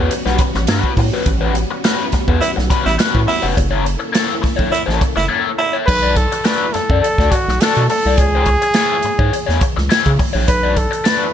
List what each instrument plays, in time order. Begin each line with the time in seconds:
Already playing: string machine G3 B3 C#4 F#4, overdriven electric guitar B4
0.00 overdriven electric guitar G3 C#4 F#4
0.11 muted overdriven electric guitar stroke, closed hi-hat
0.26 analog synth bass B1, overdriven electric guitar G3 C#4 F#4 B4, snare
0.38 muted overdriven electric guitar stroke, kick, closed hi-hat
0.54 analog synth bass A1, muted overdriven electric guitar stroke, snare
0.67 analog synth bass G2, overdriven electric guitar G3 C#4 F#4, snare, closed hi-hat
0.71 overdriven electric guitar B4
0.83 kick
0.97 analog synth bass A2, muted overdriven electric guitar stroke, kick, open hi-hat
1.14 overdriven electric guitar G3 C#4 F#4 B4
1.26 analog synth bass A1, muted overdriven electric guitar stroke, kick, closed hi-hat
1.41 overdriven electric guitar G3 C#4 F#4 B4
1.54 muted overdriven electric guitar stroke, closed hi-hat
1.71 muted overdriven electric guitar stroke
1.84 overdriven electric guitar G3 C#4 F#4 B4, snare, closed hi-hat
2.12 analog synth bass E2, muted overdriven electric guitar stroke, kick, snare, closed hi-hat
2.28 analog synth bass E2, overdriven electric guitar G3 C#4 F#4 B4, kick
2.40 baritone saxophone E4, muted overdriven electric guitar stroke, closed hi-hat
2.56 analog synth bass B1, muted overdriven electric guitar stroke, snare
2.70 overdriven electric guitar G3 C#4 F#4 B4, kick, closed hi-hat
2.86 analog synth bass A1, baritone saxophone E4, muted overdriven electric guitar stroke, snare
2.99 overdriven electric guitar G3 C#4 F#4 B4, snare, closed hi-hat
3.15 analog synth bass A2, kick
3.27 baritone saxophone E4, muted overdriven electric guitar stroke, open hi-hat
3.42 analog synth bass F1, overdriven electric guitar G3 C#4 F#4 B4
3.56 analog synth bass F#1, string machine A#3 E4 A4, muted overdriven electric guitar stroke, kick, closed hi-hat
3.71 overdriven electric guitar A#3 E4 A4 C#5
3.85 muted overdriven electric guitar stroke, closed hi-hat
3.99 muted overdriven electric guitar stroke
4.13 overdriven electric guitar A#3 E4 A4 C#5, snare, closed hi-hat
4.42 analog synth bass B1, muted overdriven electric guitar stroke, kick, snare, open hi-hat
4.56 analog synth bass B1, overdriven electric guitar A#3 E4 A4 C#5, kick
4.70 baritone saxophone E4, muted overdriven electric guitar stroke
4.74 closed hi-hat
4.86 analog synth bass A1, overdriven electric guitar A#3 E4 A4 C#5, snare
5.00 muted overdriven electric guitar stroke, kick, closed hi-hat
5.16 analog synth bass F#1, baritone saxophone E4, muted overdriven electric guitar stroke, snare
5.29 overdriven electric guitar A#3 E4 A4 C#5
5.58 baritone saxophone E4, muted overdriven electric guitar stroke
5.73 overdriven electric guitar A#3 E4 A4 C#5
5.86 analog synth bass B1, trumpet B4, muted overdriven electric guitar stroke, kick, crash
6.03 overdriven electric guitar D4 F#4 A4 D5
6.16 trumpet A4, muted overdriven electric guitar stroke, kick, closed hi-hat
6.32 muted overdriven electric guitar stroke, closed hi-hat
6.45 overdriven electric guitar D4 F#4 A4 D5, trumpet B4, snare, closed hi-hat
6.73 analog synth bass F#2, trumpet A4, muted overdriven electric guitar stroke, snare, closed hi-hat
6.90 analog synth bass F#2, overdriven electric guitar D4 F#4 A4 D5, kick
7.01 trumpet A4, muted overdriven electric guitar stroke, closed hi-hat
7.18 analog synth bass D2, overdriven electric guitar D4 F#4 A4 D5, kick, snare
7.31 trumpet F#4, muted overdriven electric guitar stroke, kick, closed hi-hat
7.48 analog synth bass B1, muted overdriven electric guitar stroke, snare
7.61 overdriven electric guitar D4 F#4 A4 D5, trumpet A4, snare, closed hi-hat
7.75 analog synth bass B2, closed hi-hat
7.89 trumpet A4, muted overdriven electric guitar stroke, open hi-hat
8.05 analog synth bass C2, overdriven electric guitar D4 F#4 A4 D5
8.17 analog synth bass C#2, trumpet G#4, muted overdriven electric guitar stroke, kick, closed hi-hat
8.35 overdriven electric guitar B3 E4 G#4 C#5
8.46 muted overdriven electric guitar stroke, kick, closed hi-hat
8.62 muted overdriven electric guitar stroke, closed hi-hat
8.74 overdriven electric guitar B3 E4 G#4 C#5, snare, closed hi-hat
9.03 analog synth bass G#2, muted overdriven electric guitar stroke, closed hi-hat
9.19 analog synth bass G#2, overdriven electric guitar B3 E4 G#4 C#5, kick
9.33 muted overdriven electric guitar stroke, closed hi-hat
9.47 analog synth bass E2, overdriven electric guitar B3 E4 G#4 C#5, snare
9.61 muted overdriven electric guitar stroke, kick, closed hi-hat
9.76 analog synth bass C#2, muted overdriven electric guitar stroke, snare
9.90 overdriven electric guitar B3 E4 G#4 C#5, snare, closed hi-hat
10.06 analog synth bass C#3, kick, closed hi-hat
10.19 muted overdriven electric guitar stroke, kick, open hi-hat
10.33 analog synth bass A#1, overdriven electric guitar B3 E4 G#4 C#5
10.48 analog synth bass B1, trumpet B4, muted overdriven electric guitar stroke, kick, closed hi-hat
10.63 overdriven electric guitar D4 F#4 A4 D5
10.76 trumpet A4, muted overdriven electric guitar stroke, kick, closed hi-hat
10.91 muted overdriven electric guitar stroke, closed hi-hat
11.04 overdriven electric guitar D4 F#4 A4 D5, trumpet B4, snare, closed hi-hat